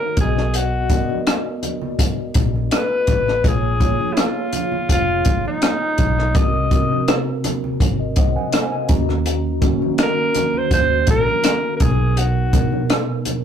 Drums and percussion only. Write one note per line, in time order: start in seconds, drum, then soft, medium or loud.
0.17 kick medium
0.17 closed hi-hat medium
0.17 low conga medium
0.38 cross-stick soft
0.54 closed hi-hat medium
0.90 kick medium
0.90 closed hi-hat medium
1.10 high conga medium
1.27 cross-stick loud
1.27 closed hi-hat medium
1.27 muted conga soft
1.63 closed hi-hat medium
1.63 high conga medium
1.63 low conga medium
1.82 low conga medium
1.99 kick medium
1.99 closed hi-hat medium
1.99 high conga medium
2.34 kick medium
2.34 closed hi-hat medium
2.34 muted conga soft
2.55 high conga medium
2.71 cross-stick loud
2.71 closed hi-hat medium
3.07 kick medium
3.07 closed hi-hat medium
3.07 low conga medium
3.28 cross-stick soft
3.44 kick loud
3.44 closed hi-hat medium
3.80 kick medium
3.80 closed hi-hat medium
4.00 high conga medium
4.17 cross-stick loud
4.17 closed hi-hat medium
4.53 closed hi-hat medium
4.53 muted conga soft
4.53 high conga medium
4.53 low conga medium
4.72 low conga medium
4.89 kick medium
4.89 closed hi-hat medium
4.89 muted conga soft
4.89 high conga medium
5.25 kick medium
5.25 closed hi-hat medium
5.46 high conga medium
5.62 cross-stick loud
5.62 closed hi-hat medium
5.62 muted conga soft
5.98 kick medium
5.98 closed hi-hat medium
5.98 muted conga soft
5.98 low conga medium
6.19 cross-stick soft
6.35 kick loud
6.35 closed hi-hat medium
6.71 kick medium
6.71 closed hi-hat medium
6.91 high conga medium
7.08 cross-stick loud
7.08 closed hi-hat medium
7.44 cross-stick soft
7.44 closed hi-hat medium
7.44 high conga medium
7.44 low conga medium
7.64 low conga medium
7.80 kick medium
7.80 closed hi-hat medium
7.80 muted conga soft
7.80 high conga medium
8.16 kick medium
8.16 closed hi-hat medium
8.38 high conga medium
8.52 cross-stick loud
8.52 closed hi-hat medium
8.52 muted conga soft
8.89 kick medium
8.89 closed hi-hat medium
8.89 low conga medium
9.09 cross-stick soft
9.26 closed hi-hat medium
9.26 muted conga soft
9.62 kick medium
9.62 closed hi-hat medium
9.62 muted conga soft
9.82 high conga medium
9.98 cross-stick loud
9.98 closed hi-hat medium
9.98 muted conga soft
10.34 cross-stick soft
10.34 closed hi-hat medium
10.34 high conga medium
10.34 low conga medium
10.54 low conga medium
10.71 kick medium
10.71 closed hi-hat medium
10.71 muted conga soft
10.71 high conga medium
11.07 kick medium
11.07 closed hi-hat medium
11.29 high conga medium
11.44 cross-stick loud
11.44 closed hi-hat medium
11.44 muted conga soft
11.80 kick medium
11.80 closed hi-hat medium
11.80 low conga medium
12.17 closed hi-hat medium
12.17 muted conga soft
12.53 kick medium
12.53 closed hi-hat medium
12.53 muted conga soft
12.72 high conga medium
12.89 cross-stick loud
12.89 closed hi-hat medium
12.89 muted conga soft
13.25 closed hi-hat medium
13.25 high conga medium
13.25 low conga medium